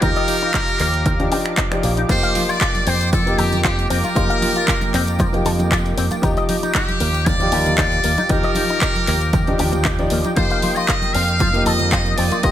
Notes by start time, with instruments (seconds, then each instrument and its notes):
Already playing: analog synth pad G4 F5
0.01 fingered electric bass D#2, grand piano F3 D#4 G4, clean electric guitar D#4, trumpet section A#4, analog synth pad D6, kick, closed hi-hat
0.16 clean electric guitar D#5, closed hi-hat
0.28 clean electric guitar D#4, open hi-hat
0.42 clean electric guitar D#4, closed hi-hat
0.54 clean electric guitar D#4, kick, clap, closed hi-hat
0.68 closed hi-hat
0.80 fingered electric bass D#2, clean electric guitar A#3, clap, open hi-hat
0.94 closed hi-hat
1.06 clean electric guitar D#3, kick, closed hi-hat
1.20 grand piano F3 D4 D#4 G4, closed hi-hat
1.31 grand piano F3 D4 D#4 G4, clean electric guitar G4, open hi-hat
1.46 finger snap, closed hi-hat
1.57 clean electric guitar D#4, kick, clap, closed hi-hat
1.71 grand piano F3 D#4 G4 D5, finger snap, closed hi-hat
1.83 fingered electric bass A#1, clean electric guitar A#3, open hi-hat
1.97 clean electric guitar D#4, closed hi-hat
2.09 fingered electric bass F2, grand piano F3 A#3 D#4 G4, analog synth pad A#3 G5, clean electric guitar F4, trumpet section C5, kick, closed hi-hat, tambourine, crash
2.23 clean electric guitar F5, closed hi-hat, tambourine
2.35 clean electric guitar F4, open hi-hat, high conga
2.49 clean electric guitar F4, trumpet section D5, closed hi-hat, tambourine
2.60 clean electric guitar F4, kick, clap, closed hi-hat, tambourine
2.75 closed hi-hat, tambourine, high conga
2.87 fingered electric bass F2, clean electric guitar C4, trumpet section C5, open hi-hat
3.01 closed hi-hat, tambourine
3.12 clean electric guitar F3, trumpet section A4, kick, closed hi-hat, tambourine, high conga
3.26 grand piano F3 A#3 D#4 G4, closed hi-hat, tambourine
3.38 fingered electric bass F2, trumpet section G4, clean electric guitar A4, open hi-hat, low conga
3.52 closed hi-hat, tambourine, high conga, low conga
3.63 clean electric guitar F4, trumpet section G4, kick, clap, closed hi-hat, tambourine
3.79 closed hi-hat, tambourine
3.90 fingered electric bass F2, clean electric guitar C4, trumpet section A#4, open hi-hat
4.04 clean electric guitar F4, closed hi-hat, tambourine, high conga
4.15 fingered electric bass F2, grand piano F3 A#3 D#4 G4, clean electric guitar F4, kick, closed hi-hat, tambourine
4.29 clean electric guitar F5, closed hi-hat, tambourine
4.42 clean electric guitar F4, open hi-hat, high conga
4.56 clean electric guitar F4, closed hi-hat, tambourine
4.68 clean electric guitar F4, kick, clap, closed hi-hat, tambourine
4.81 closed hi-hat, tambourine, high conga
4.94 fingered electric bass F2, clean electric guitar C4, clap, open hi-hat
5.07 closed hi-hat, tambourine
5.19 clean electric guitar F3, kick, closed hi-hat, tambourine, high conga
5.32 grand piano F3 A#3 D#4 G4, closed hi-hat, tambourine
5.45 fingered electric bass F2, clean electric guitar A4, open hi-hat, low conga
5.59 closed hi-hat, tambourine, high conga, low conga
5.71 clean electric guitar F4, kick, clap, closed hi-hat, tambourine
5.85 closed hi-hat, tambourine
5.97 fingered electric bass F2, clean electric guitar C4, open hi-hat
6.11 clean electric guitar F4, closed hi-hat, tambourine, high conga
6.22 fingered electric bass D#2, grand piano F3 D#4 G4, clean electric guitar D#4, analog synth pad G4 F5 D6, kick, closed hi-hat, tambourine
6.37 clean electric guitar D#5, closed hi-hat, tambourine
6.49 clean electric guitar D#4, open hi-hat, high conga
6.63 clean electric guitar D#4, closed hi-hat, tambourine
6.74 clean electric guitar D#4, trumpet section G4, kick, clap, closed hi-hat, tambourine
6.88 closed hi-hat, tambourine, high conga
7.00 fingered electric bass D#2, clean electric guitar A#3, open hi-hat
7.14 closed hi-hat, tambourine
7.26 clean electric guitar D#3, trumpet section D5, kick, closed hi-hat, tambourine, high conga
7.39 grand piano F3 D#4 G4 D5, closed hi-hat, tambourine
7.52 fingered electric bass D#2, clean electric guitar G4, open hi-hat, low conga
7.66 closed hi-hat, tambourine, high conga, low conga
7.78 clean electric guitar D#4, trumpet section D5, kick, clap, closed hi-hat, tambourine
7.92 closed hi-hat, tambourine
8.04 fingered electric bass D#2, clean electric guitar A#3, open hi-hat
8.18 clean electric guitar D#4, closed hi-hat, tambourine, high conga
8.29 fingered electric bass D#2, grand piano F3 D#4 G4, clean electric guitar D#4, trumpet section A#4, analog synth pad G5, kick, closed hi-hat, tambourine
8.43 clean electric guitar D#5, closed hi-hat, tambourine
8.55 clean electric guitar D#4, open hi-hat, high conga
8.69 clean electric guitar D#4, closed hi-hat, tambourine
8.81 clean electric guitar D#4, kick, clap, closed hi-hat, tambourine
8.96 closed hi-hat, tambourine, high conga
9.07 fingered electric bass D#2, clean electric guitar A#3, clap, open hi-hat
9.21 closed hi-hat, tambourine
9.33 clean electric guitar D#3, kick, closed hi-hat, tambourine, high conga
9.47 grand piano F3 D4 D#4 G4, closed hi-hat, tambourine
9.58 fingered electric bass D#2, grand piano F3 D4 D#4 G4, clean electric guitar G4, open hi-hat, low conga
9.72 closed hi-hat, tambourine, high conga, low conga
9.85 clean electric guitar D#4, kick, clap, closed hi-hat, tambourine
9.99 grand piano F3 D#4 G4 D5, closed hi-hat, tambourine
10.10 fingered electric bass D#2, clean electric guitar A#3, open hi-hat
10.25 clean electric guitar D#4, closed hi-hat, tambourine, high conga
10.36 fingered electric bass F2, grand piano F3 A#3 D#4 G4, analog synth pad A#3 D#6, clean electric guitar F4, trumpet section C5, kick, closed hi-hat, tambourine
10.51 clean electric guitar F5, closed hi-hat, tambourine
10.62 clean electric guitar F4, open hi-hat, high conga
10.75 clean electric guitar F4, trumpet section D#5, closed hi-hat, tambourine
10.88 clean electric guitar F4, kick, clap, closed hi-hat, tambourine
11.02 closed hi-hat, tambourine, high conga
11.14 fingered electric bass F2, clean electric guitar C4, trumpet section F5, open hi-hat
11.28 closed hi-hat, tambourine
11.39 clean electric guitar F3, kick, closed hi-hat, tambourine, high conga
11.53 grand piano F3 A#3 D#4 G4, closed hi-hat, tambourine
11.65 fingered electric bass F2, clean electric guitar A4, trumpet section D#5, open hi-hat, low conga
11.79 closed hi-hat, tambourine, high conga, low conga
11.91 clean electric guitar F4, kick, clap, closed hi-hat, tambourine
12.06 closed hi-hat, tambourine
12.17 fingered electric bass F2, clean electric guitar C4, trumpet section D5, open hi-hat
12.32 clean electric guitar F4, closed hi-hat, tambourine, high conga
12.43 fingered electric bass F2, grand piano F3 A#3 D#4 G4, clean electric guitar F4, trumpet section D#5, kick, closed hi-hat, tambourine